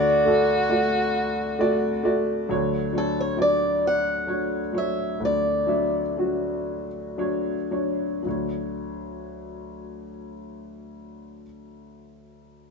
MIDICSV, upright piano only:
0, 0, Header, 1, 2, 480
1, 0, Start_track
1, 0, Key_signature, 2, "major"
1, 0, Tempo, 888889
1, 1351, Time_signature, 6, 3, 24, 8
1, 2316, Tempo, 943396
1, 3276, Tempo, 1010101
1, 3756, Tempo, 1073345
1, 4236, Tempo, 1102941
1, 6171, End_track
2, 0, Start_track
2, 0, Title_t, "Upright piano"
2, 0, Program_c, 0, 0
2, 0, Note_on_c, 0, 38, 55
2, 0, Note_on_c, 0, 50, 53
2, 0, Note_on_c, 0, 57, 64
2, 0, Note_on_c, 0, 66, 56
2, 0, Note_on_c, 0, 74, 74
2, 31, Control_c, 0, 64, 127
2, 97, Note_off_c, 0, 57, 0
2, 98, Note_off_c, 0, 66, 0
2, 100, Note_off_c, 0, 74, 0
2, 136, Note_on_c, 0, 57, 61
2, 143, Note_on_c, 0, 66, 54
2, 148, Note_on_c, 0, 69, 66
2, 306, Note_off_c, 0, 57, 0
2, 309, Note_off_c, 0, 66, 0
2, 312, Note_off_c, 0, 69, 0
2, 375, Note_on_c, 0, 57, 59
2, 378, Note_on_c, 0, 66, 55
2, 381, Note_on_c, 0, 74, 61
2, 708, Note_off_c, 0, 57, 0
2, 709, Note_off_c, 0, 66, 0
2, 711, Note_off_c, 0, 74, 0
2, 859, Note_on_c, 0, 57, 65
2, 863, Note_on_c, 0, 66, 64
2, 867, Note_on_c, 0, 74, 88
2, 1027, Note_off_c, 0, 57, 0
2, 1030, Note_off_c, 0, 66, 0
2, 1032, Note_off_c, 0, 74, 0
2, 1099, Note_on_c, 0, 57, 66
2, 1106, Note_on_c, 0, 66, 66
2, 1108, Note_on_c, 0, 74, 72
2, 1321, Note_off_c, 0, 38, 0
2, 1321, Note_off_c, 0, 50, 0
2, 1343, Note_on_c, 0, 54, 64
2, 1344, Note_off_c, 0, 57, 0
2, 1346, Note_on_c, 0, 50, 57
2, 1346, Note_on_c, 0, 62, 60
2, 1347, Note_on_c, 0, 38, 52
2, 1348, Note_off_c, 0, 66, 0
2, 1349, Note_off_c, 0, 74, 0
2, 1354, Note_on_c, 0, 73, 77
2, 1358, Control_c, 0, 64, 0
2, 1462, Control_c, 0, 64, 127
2, 1538, Note_off_c, 0, 54, 0
2, 1539, Note_off_c, 0, 62, 0
2, 1543, Note_off_c, 0, 73, 0
2, 1581, Note_on_c, 0, 54, 50
2, 1586, Note_on_c, 0, 62, 49
2, 1593, Note_on_c, 0, 73, 53
2, 1748, Note_off_c, 0, 54, 0
2, 1750, Note_off_c, 0, 62, 0
2, 1754, Note_off_c, 0, 73, 0
2, 1820, Note_on_c, 0, 54, 50
2, 1825, Note_on_c, 0, 62, 44
2, 1829, Note_on_c, 0, 74, 55
2, 2152, Note_off_c, 0, 54, 0
2, 2155, Note_off_c, 0, 62, 0
2, 2157, Note_off_c, 0, 74, 0
2, 2306, Note_on_c, 0, 54, 53
2, 2309, Note_on_c, 0, 62, 47
2, 2313, Note_on_c, 0, 73, 60
2, 2469, Note_off_c, 0, 54, 0
2, 2470, Note_off_c, 0, 62, 0
2, 2473, Note_off_c, 0, 73, 0
2, 2540, Note_on_c, 0, 54, 52
2, 2543, Note_on_c, 0, 62, 46
2, 2549, Note_on_c, 0, 73, 60
2, 2765, Note_off_c, 0, 50, 0
2, 2766, Note_off_c, 0, 38, 0
2, 2780, Note_on_c, 0, 38, 45
2, 2780, Note_on_c, 0, 50, 40
2, 2866, Note_off_c, 0, 54, 0
2, 2868, Note_off_c, 0, 62, 0
2, 2870, Note_off_c, 0, 73, 0
2, 3017, Note_on_c, 0, 54, 54
2, 3019, Note_on_c, 0, 62, 47
2, 3025, Note_on_c, 0, 76, 49
2, 3190, Note_off_c, 0, 54, 0
2, 3191, Note_off_c, 0, 62, 0
2, 3193, Note_off_c, 0, 76, 0
2, 3275, Note_on_c, 0, 54, 42
2, 3280, Note_on_c, 0, 62, 44
2, 3283, Note_on_c, 0, 66, 55
2, 3597, Note_off_c, 0, 54, 0
2, 3600, Note_off_c, 0, 62, 0
2, 3601, Note_off_c, 0, 66, 0
2, 3752, Note_on_c, 0, 54, 55
2, 3755, Note_on_c, 0, 62, 53
2, 3758, Note_on_c, 0, 73, 63
2, 3913, Note_off_c, 0, 54, 0
2, 3914, Note_off_c, 0, 62, 0
2, 3916, Note_off_c, 0, 73, 0
2, 3991, Note_on_c, 0, 54, 51
2, 3994, Note_on_c, 0, 62, 49
2, 3994, Note_on_c, 0, 73, 53
2, 4215, Note_off_c, 0, 50, 0
2, 4215, Note_off_c, 0, 54, 0
2, 4216, Note_off_c, 0, 38, 0
2, 4222, Note_on_c, 0, 54, 45
2, 4227, Note_off_c, 0, 62, 0
2, 4234, Note_on_c, 0, 62, 41
2, 4237, Note_on_c, 0, 38, 44
2, 4238, Note_off_c, 0, 73, 0
2, 4242, Control_c, 0, 64, 0
2, 4247, Note_on_c, 0, 73, 48
2, 4325, Control_c, 0, 64, 127
2, 5604, Note_off_c, 0, 54, 0
2, 5615, Note_off_c, 0, 62, 0
2, 5618, Note_off_c, 0, 38, 0
2, 5629, Note_off_c, 0, 73, 0
2, 6171, End_track
0, 0, End_of_file